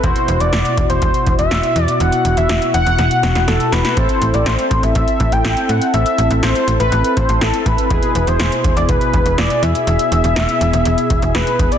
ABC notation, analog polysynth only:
X:1
M:4/4
L:1/8
Q:1/4=122
K:Em
V:1 name="Analog polysynth"
[B,,EF]8- | [B,,EF]8 | [CEA]8- | [CEA]8 |
[B,,E^G]8- | [B,,E^G]8 |]